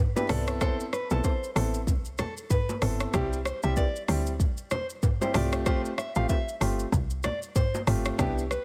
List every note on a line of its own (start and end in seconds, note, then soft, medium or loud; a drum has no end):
0.16 0.28 B3 medium
0.16 0.35 D4 medium
0.16 0.28 E4 medium
0.16 0.35 G4 medium
0.16 0.27 B4 medium
0.16 low bongo medium
0.16 shaker medium
0.29 0.79 C2 loud
0.29 0.59 B3 loud
0.29 0.59 C4 medium
0.29 0.59 E4 medium
0.29 0.59 A4 loud
0.29 0.44 D5 medium
0.29 cross-stick loud
0.29 mid tom loud
0.29 open hi-hat medium
0.29 shaker medium
0.47 cross-stick loud
0.47 shaker soft
0.61 0.83 B3 loud
0.61 0.83 C4 medium
0.61 0.83 E4 medium
0.61 0.83 A4 loud
0.61 0.76 C5 medium
0.61 kick loud
0.61 cross-stick loud
0.61 low conga medium
0.61 shaker medium
0.80 shaker medium
0.93 1.07 B4 medium
0.93 cross-stick medium
0.93 shaker medium
1.10 1.21 B1 loud
1.10 1.29 B3 medium
1.10 1.30 C4 medium
1.10 1.30 E4 medium
1.10 1.21 A4 medium
1.10 1.30 A4 medium
1.10 low bongo medium
1.10 shaker medium
1.24 1.49 C5 medium
1.24 kick loud
1.24 high bongo medium
1.24 shaker medium
1.44 shaker medium
1.55 1.89 A1 loud
1.55 1.78 B3 medium
1.55 1.78 C4 medium
1.55 1.78 E4 medium
1.55 1.78 A4 medium
1.55 cross-stick medium
1.55 open hi-hat medium
1.55 low bongo medium
1.55 shaker medium
1.74 shaker medium
1.87 2.26 C2 loud
1.87 kick loud
1.87 low conga medium
1.87 shaker medium
2.05 shaker medium
2.18 2.33 A4 medium
2.18 cross-stick medium
2.18 high bongo medium
2.18 low bongo medium
2.18 low conga medium
2.18 shaker medium
2.37 shaker medium
2.50 2.75 B4 medium
2.50 kick loud
2.50 mid tom loud
2.50 high bongo medium
2.50 shaker medium
2.69 low bongo medium
2.69 shaker medium
2.82 3.07 G1 medium
2.82 3.11 B3 medium
2.82 3.11 C4 medium
2.82 3.11 E4 medium
2.82 3.12 A4 medium
2.82 cross-stick loud
2.82 mid tom medium
2.82 open hi-hat medium
2.82 shaker medium
3.00 cross-stick loud
3.00 shaker soft
3.13 3.53 C2 loud
3.13 3.36 G3 loud
3.13 3.36 C4 medium
3.13 3.36 E4 medium
3.13 3.28 G4 medium
3.13 3.36 G4 loud
3.13 kick loud
3.13 cross-stick loud
3.13 low conga medium
3.13 shaker medium
3.33 shaker medium
3.45 3.60 C5 medium
3.45 cross-stick loud
3.45 shaker medium
3.63 3.88 C2 loud
3.63 3.82 G3 medium
3.63 3.82 C4 medium
3.63 3.82 E4 medium
3.63 3.82 G4 medium
3.63 3.74 E5 medium
3.63 shaker medium
3.76 4.02 D5 medium
3.76 kick loud
3.76 high bongo medium
3.76 shaker medium
3.96 shaker medium
4.08 4.47 D2 loud
4.08 4.31 G3 medium
4.08 4.31 C4 medium
4.08 4.31 E4 medium
4.08 4.31 G4 medium
4.08 cross-stick medium
4.08 open hi-hat medium
4.08 shaker medium
4.26 shaker medium
4.40 kick loud
4.40 low conga medium
4.40 shaker medium
4.57 shaker medium
4.70 4.86 C5 medium
4.70 cross-stick medium
4.70 high bongo medium
4.70 low bongo medium
4.70 low conga medium
4.70 shaker medium
4.90 shaker medium
5.03 kick loud
5.03 mid tom loud
5.03 high bongo medium
5.03 shaker medium
5.21 5.40 G3 medium
5.21 5.33 C4 medium
5.21 5.40 E4 medium
5.21 5.33 G4 medium
5.21 5.32 C5 medium
5.21 low bongo medium
5.21 shaker medium
5.34 5.84 C2 loud
5.34 5.64 A3 loud
5.34 5.64 C4 medium
5.34 5.64 F4 medium
5.34 5.64 G4 loud
5.34 5.49 D5 medium
5.34 cross-stick loud
5.34 mid tom loud
5.34 open hi-hat medium
5.34 shaker medium
5.52 cross-stick loud
5.52 shaker soft
5.66 5.88 A3 medium
5.66 5.88 C4 medium
5.66 5.88 F4 medium
5.66 5.89 G4 loud
5.66 5.81 C5 loud
5.66 kick loud
5.66 cross-stick loud
5.66 low conga medium
5.66 shaker medium
5.85 shaker medium
5.98 6.12 E5 medium
5.98 cross-stick loud
5.98 shaker medium
6.15 6.27 A1 loud
6.15 6.35 A3 medium
6.15 6.35 C4 medium
6.15 6.35 F4 medium
6.15 6.35 G4 medium
6.15 6.27 F5 medium
6.15 shaker medium
6.29 6.54 E5 medium
6.29 kick loud
6.29 high bongo medium
6.29 shaker medium
6.49 shaker medium
6.61 6.86 G1 medium
6.61 6.83 A3 medium
6.61 6.83 C4 medium
6.61 6.83 F4 medium
6.61 6.83 G4 medium
6.61 cross-stick medium
6.61 open hi-hat medium
6.61 shaker medium
6.79 shaker medium
6.92 7.31 C2 loud
6.92 kick loud
6.92 low conga medium
6.92 shaker medium
7.10 shaker medium
7.23 7.39 D5 medium
7.23 cross-stick medium
7.23 high bongo medium
7.23 low bongo medium
7.23 low conga medium
7.23 shaker medium
7.42 shaker medium
7.56 7.81 C5 medium
7.56 kick loud
7.56 mid tom loud
7.56 high bongo medium
7.56 shaker medium
7.74 low bongo medium
7.74 shaker medium
7.87 8.12 G1 loud
7.87 8.17 A3 medium
7.87 8.17 C4 medium
7.87 8.17 F4 medium
7.87 8.17 G4 medium
7.87 cross-stick loud
7.87 mid tom medium
7.87 open hi-hat medium
7.87 shaker medium
8.05 cross-stick loud
8.05 shaker soft
8.18 8.58 C2 loud
8.18 8.41 B3 loud
8.18 8.41 D4 medium
8.18 8.41 E4 medium
8.18 8.41 G4 loud
8.18 8.33 G4 medium
8.18 kick loud
8.18 cross-stick loud
8.18 low conga medium
8.18 shaker medium
8.38 shaker medium
8.51 8.65 B4 medium
8.51 cross-stick medium
8.51 shaker medium